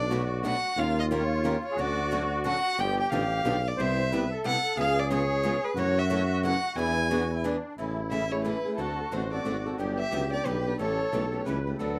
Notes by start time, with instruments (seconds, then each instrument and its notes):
Already playing: tuba B1, accordion D4, violin D5
0.10 steel-string acoustic guitar B2 F#3 A3 D4 F#4 B4, accordion F#4
0.43 steel-string acoustic guitar B2 F#3 A3 D4 F#4 B4, violin F#5
0.77 tuba D#2, steel-string acoustic guitar D#3 A#3 C#4 G4 A#4, accordion F4, violin F5
1.00 violin D#5
1.11 steel-string acoustic guitar D#3 A#3 C#4 G4 A#4, violin C#5
1.45 steel-string acoustic guitar D#3 A#3 C#4 G4 A#4
1.66 violin C#5
1.71 accordion G#4
1.76 tuba D2, steel-string acoustic guitar D3 F#3 A3 C#4 F#4 A4, accordion F#4
1.80 violin D5
2.12 steel-string acoustic guitar D3 F#3 A3 C#4 F#4 A4
2.45 steel-string acoustic guitar D3 F#3 A3 C#4 F#4 A4, violin F#5
2.77 tuba G1, steel-string acoustic guitar D3 F3 B3 D4 G4, accordion G4, violin G5
3.00 violin G5
3.12 tuba A1, steel-string acoustic guitar D3 F3 B3 D4 G4, violin F5
3.44 tuba B1, steel-string acoustic guitar D3 F3 B3 D4 G4
3.68 violin D5
3.77 tuba C2, steel-string acoustic guitar C3 G3 B3 E4 G4, accordion C5
3.81 violin E5
4.11 steel-string acoustic guitar C3 G3 B3 E4 G4, accordion B4
4.30 accordion A4
4.44 steel-string acoustic guitar C3 G3 B3 E4 G4, violin F#5
4.76 tuba C#2, steel-string acoustic guitar C#3 G#3 B3 F4 G#4, accordion G#4
4.80 violin F5
5.00 violin D5
5.10 steel-string acoustic guitar C#3 G#3 B3 F4 G#4, violin C#5
5.45 steel-string acoustic guitar C#3 G#3 B3 F4 G#4
5.64 violin B4
5.75 tuba F#2, steel-string acoustic guitar C#3 E3 F#3 A3 C#4 E4 F#4 A4, accordion F#4, violin C#5
5.99 violin E5
6.10 steel-string acoustic guitar C#3 E3 F#3 A3 C#4 E4 F#4 A4
6.43 steel-string acoustic guitar C#3 E3 F#3 A3 C#4 E4 F#4 A4, violin F#5
6.75 tuba E2, steel-string acoustic guitar E3 B3 D4 G#4 B4, accordion E4, violin G#5
7.10 steel-string acoustic guitar E3 B3 D4 G#4 B4, accordion F#4
7.31 accordion E4
7.43 steel-string acoustic guitar E3 B3 D4 G#4 B4, accordion D4
7.77 tuba A1, steel-string acoustic guitar C#3 E3 G#3 A3 C#4 E4 G#4 A4, accordion E4
8.11 steel-string acoustic guitar C#3 E3 G#3 A3 C#4 E4 G#4 A4, violin E5
8.31 steel-string acoustic guitar A3 C#4 G#4, violin C#5
8.44 steel-string acoustic guitar C#3 E3 G#3 A3 C#4 E4 G#4 A4, violin B4
8.65 steel-string acoustic guitar A3 C#4 G#4
8.77 tuba D2, steel-string acoustic guitar D3 A3 C4 F#4 A4, accordion F#4, violin A4
9.11 tuba A1, steel-string acoustic guitar D3 A3 C4 F#4 A4, violin C5
9.32 steel-string acoustic guitar C4 F#4 A4, violin D5
9.44 tuba G#1, steel-string acoustic guitar D3 A3 C4 F#4 A4
9.66 steel-string acoustic guitar C4 F#4 A4
9.72 accordion F#4
9.78 tuba G1, steel-string acoustic guitar D3 F#3 B3 D4 G4, accordion G4
9.99 violin E5
10.11 tuba C#2, steel-string acoustic guitar D3 F#3 B3 D4 G4
10.31 steel-string acoustic guitar B3 D4 G4, violin D5
10.45 tuba B1, steel-string acoustic guitar D3 F#3 B3 D4 G4, violin B4
10.66 steel-string acoustic guitar B3 D4 G4
10.79 tuba A1, steel-string acoustic guitar C#3 E3 G3 A3 C#4 E4 G4 A4, accordion A4, violin C#5
11.12 tuba B1, steel-string acoustic guitar C#3 E3 G3 A3 C#4 E4 G4 A4
11.32 steel-string acoustic guitar A3 C#4 G4
11.45 tuba C#2, steel-string acoustic guitar C#3 E3 G3 A3 C#4 E4 G4 A4, accordion B4
11.67 steel-string acoustic guitar A3 C#4 G4
11.78 tuba D2, steel-string acoustic guitar D3 F#3 A3 B3 D4 F#4 B4, accordion A4